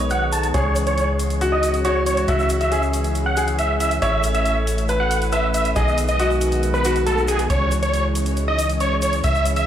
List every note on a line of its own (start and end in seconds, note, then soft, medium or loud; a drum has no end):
0.00 0.52 B1 medium
0.00 0.52 D#3 medium
0.00 3.98 G#3 medium
0.00 0.52 B3 medium
0.00 0.46 C#5 medium
0.10 0.25 F#5 medium
0.10 closed hi-hat medium
0.10 shaker soft
0.32 0.47 A5 medium
0.32 closed hi-hat medium
0.32 shaker medium
0.43 closed hi-hat medium
0.43 shaker soft
0.54 2.26 C#2 medium
0.54 5.72 E3 medium
0.54 5.72 C#4 medium
0.54 1.33 G#4 medium
0.54 0.76 C#5 loud
0.54 closed hi-hat medium
0.54 shaker soft
0.76 closed hi-hat medium
0.76 shaker medium
0.87 1.08 C#5 loud
0.87 closed hi-hat medium
0.87 shaker soft
0.98 closed hi-hat medium
0.98 shaker soft
1.19 closed hi-hat medium
1.19 shaker medium
1.30 closed hi-hat medium
1.30 shaker soft
1.41 1.83 F#4 medium
1.41 closed hi-hat medium
1.41 shaker soft
1.52 1.74 D#5 medium
1.63 closed hi-hat medium
1.63 shaker medium
1.74 closed hi-hat medium
1.74 shaker soft
1.85 2.26 F#4 medium
1.85 1.99 C#5 medium
1.85 closed hi-hat medium
1.85 shaker soft
2.06 2.21 C#5 medium
2.06 closed hi-hat medium
2.06 shaker medium
2.17 closed hi-hat medium
2.17 shaker soft
2.28 4.00 C#2 medium
2.28 2.70 F#4 medium
2.28 2.50 E5 loud
2.28 closed hi-hat medium
2.28 shaker soft
2.39 shaker soft
2.49 closed hi-hat medium
2.49 shaker medium
2.61 2.82 E5 medium
2.61 closed hi-hat medium
2.61 shaker soft
2.72 3.28 G#4 medium
2.72 closed hi-hat medium
2.72 shaker soft
2.82 shaker soft
2.93 closed hi-hat medium
2.93 shaker medium
3.04 closed hi-hat medium
3.04 shaker soft
3.15 closed hi-hat medium
3.15 shaker soft
3.26 3.48 F#5 medium
3.37 3.93 G#4 medium
3.37 closed hi-hat medium
3.37 shaker medium
3.47 closed hi-hat medium
3.47 shaker soft
3.59 3.73 E5 medium
3.59 closed hi-hat medium
3.59 shaker soft
3.80 3.95 E5 medium
3.80 closed hi-hat medium
3.80 shaker medium
3.91 closed hi-hat medium
3.91 shaker soft
4.02 5.74 A1 medium
4.02 5.74 A3 medium
4.02 4.80 C#5 medium
4.02 4.24 E5 loud
4.02 closed hi-hat medium
4.02 shaker soft
4.23 closed hi-hat medium
4.23 shaker medium
4.34 4.56 E5 medium
4.34 closed hi-hat medium
4.34 shaker soft
4.46 closed hi-hat medium
4.46 shaker soft
4.67 closed hi-hat medium
4.67 shaker medium
4.78 closed hi-hat medium
4.78 shaker soft
4.89 5.30 B4 medium
4.89 closed hi-hat medium
4.89 shaker soft
5.00 5.21 F#5 medium
5.11 closed hi-hat medium
5.11 shaker medium
5.22 closed hi-hat medium
5.22 shaker soft
5.32 5.74 B4 medium
5.32 5.47 E5 medium
5.32 closed hi-hat medium
5.32 shaker soft
5.54 5.69 E5 medium
5.54 closed hi-hat medium
5.54 shaker medium
5.65 closed hi-hat medium
5.65 shaker soft
5.76 7.48 B1 medium
5.76 7.48 D#3 medium
5.76 9.66 G#3 medium
5.76 7.48 B3 medium
5.76 6.17 G#4 medium
5.76 5.98 D#5 loud
5.76 closed hi-hat medium
5.76 shaker soft
5.88 shaker soft
5.98 closed hi-hat medium
5.98 shaker medium
6.08 6.30 D#5 medium
6.08 closed hi-hat medium
6.08 shaker soft
6.19 6.76 F#4 medium
6.19 closed hi-hat medium
6.19 shaker soft
6.30 shaker soft
6.41 closed hi-hat medium
6.41 shaker medium
6.52 closed hi-hat medium
6.52 shaker soft
6.63 closed hi-hat medium
6.63 shaker soft
6.74 6.95 B4 medium
6.74 shaker soft
6.84 7.41 F#4 medium
6.84 closed hi-hat medium
6.84 shaker medium
6.96 closed hi-hat medium
6.96 shaker soft
7.06 7.21 A4 medium
7.06 closed hi-hat medium
7.06 shaker soft
7.18 shaker soft
7.28 7.43 G#4 medium
7.28 closed hi-hat medium
7.28 shaker medium
7.39 closed hi-hat medium
7.39 shaker soft
7.50 9.22 C#2 medium
7.50 9.66 E3 medium
7.50 9.66 C#4 medium
7.50 7.71 C#5 loud
7.50 closed hi-hat medium
7.50 shaker soft
7.71 closed hi-hat medium
7.71 shaker medium
7.83 8.04 C#5 medium
7.83 closed hi-hat medium
7.83 shaker soft
7.94 closed hi-hat medium
7.94 shaker soft
8.15 closed hi-hat medium
8.15 shaker medium
8.26 closed hi-hat medium
8.26 shaker soft
8.37 closed hi-hat medium
8.37 shaker soft
8.48 8.69 D#5 medium
8.59 closed hi-hat medium
8.59 shaker medium
8.70 closed hi-hat medium
8.70 shaker soft
8.80 8.95 C#5 medium
8.80 closed hi-hat medium
8.80 shaker soft
9.02 9.17 C#5 medium
9.02 closed hi-hat medium
9.02 shaker medium
9.13 closed hi-hat medium
9.13 shaker soft
9.24 9.66 C#2 medium
9.24 9.46 E5 loud
9.24 closed hi-hat medium
9.24 shaker soft
9.35 shaker soft
9.45 closed hi-hat medium
9.45 shaker medium
9.56 9.66 E5 medium
9.56 closed hi-hat medium
9.56 shaker soft